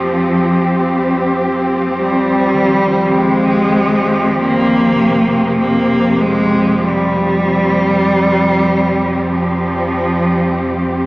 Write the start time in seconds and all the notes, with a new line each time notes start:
Already playing: F2 F3 C4 G4
1.97 G3
2.53 D#3
3.18 G#3
4.38 A#3
4.95 C3
5.60 A#3
6.21 G#3
6.81 G3
9.26 F3